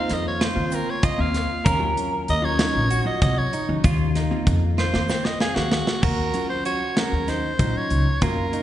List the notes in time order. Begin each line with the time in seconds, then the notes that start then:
Already playing: A#3 C4 D#4 F4 C5 F5
0.09 F2, snare, closed hi-hat, shaker
0.13 D#5
0.28 C#5
0.41 F4 C5, snare, closed hi-hat
0.56 D#3 A#3 C4 F4
0.72 C4 A#4, closed hi-hat, shaker
0.90 C#5
1.03 F4 D#5, kick, closed hi-hat
1.18 D#2 A#3 C4 F4 F5
1.34 snare, closed hi-hat, shaker
1.65 D#2 C#4 A#4, kick, closed hi-hat, shaker
1.80 F#3 C#4 F4
1.97 closed hi-hat
2.28 D#2 D#5, closed hi-hat, shaker
2.42 F#3 C#4 F4 C#5
2.59 D#4, snare, closed hi-hat
2.75 A#1
2.90 F#4, closed hi-hat, shaker
3.05 F#3 F4 C#5 D#5
3.22 C3 D#5, kick, closed hi-hat
3.38 C#5
3.53 D#4, closed hi-hat, shaker
3.69 D#2 F#3 C#4 D#4
3.84 D#2 F4, kick, closed hi-hat, shaker
4.15 D#4, snare, closed hi-hat, shaker
4.31 A#3 C4 F4
4.47 F2, kick, closed hi-hat
4.78 F4 C5, snare, shaker
4.93 D#3 A#3 C4 F4, snare
5.09 C4, snare, shaker
5.25 D#5, snare
5.40 G#4 F5, snare, shaker
5.55 D#2 A#3 C4 F#4 G#4, snare
5.72 snare, shaker
5.87 snare
6.03 D#2 F#4 A#4, kick, crash
6.34 F#3 C#4 F4, closed hi-hat
6.50 C5
6.65 F#4 C#5, closed hi-hat
6.97 F#3 C#4 G#4 A#4, snare, closed hi-hat
7.12 D#2
7.28 D#4 C5, snare, closed hi-hat
7.59 A#1 F#3 C#4 D#4 F4, kick, closed hi-hat
7.77 C#5
7.90 C#2, closed hi-hat
8.22 F#2 A#3 C#4 F4 F#4 A#4, kick, closed hi-hat
8.53 D#4, closed hi-hat